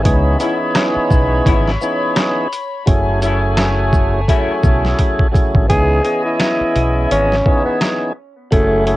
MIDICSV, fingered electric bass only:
0, 0, Header, 1, 3, 480
1, 0, Start_track
1, 0, Key_signature, 4, "minor"
1, 0, Tempo, 705882
1, 35, Time_signature, 4, 2, 24, 8
1, 6097, End_track
2, 0, Start_track
2, 0, Title_t, "Fingered electric bass"
2, 0, Program_c, 0, 33
2, 36, Note_on_c, 0, 37, 109
2, 234, Note_off_c, 0, 37, 0
2, 753, Note_on_c, 0, 35, 86
2, 952, Note_off_c, 0, 35, 0
2, 994, Note_on_c, 0, 32, 93
2, 1193, Note_off_c, 0, 32, 0
2, 1956, Note_on_c, 0, 30, 107
2, 2888, Note_off_c, 0, 30, 0
2, 3153, Note_on_c, 0, 35, 92
2, 3352, Note_off_c, 0, 35, 0
2, 3772, Note_on_c, 0, 32, 93
2, 3857, Note_off_c, 0, 32, 0
2, 3876, Note_on_c, 0, 37, 105
2, 4074, Note_off_c, 0, 37, 0
2, 4596, Note_on_c, 0, 35, 83
2, 4794, Note_off_c, 0, 35, 0
2, 4836, Note_on_c, 0, 32, 90
2, 5034, Note_off_c, 0, 32, 0
2, 5796, Note_on_c, 0, 30, 103
2, 6097, Note_off_c, 0, 30, 0
2, 6097, End_track
3, 0, Start_track
3, 0, Title_t, "Muted fingered electric bass strokes"
3, 654, Note_on_c, 9, 29, 50
3, 722, Note_off_c, 9, 29, 0
3, 4493, Note_on_c, 9, 29, 48
3, 4561, Note_off_c, 9, 29, 0
3, 6097, End_track
0, 0, End_of_file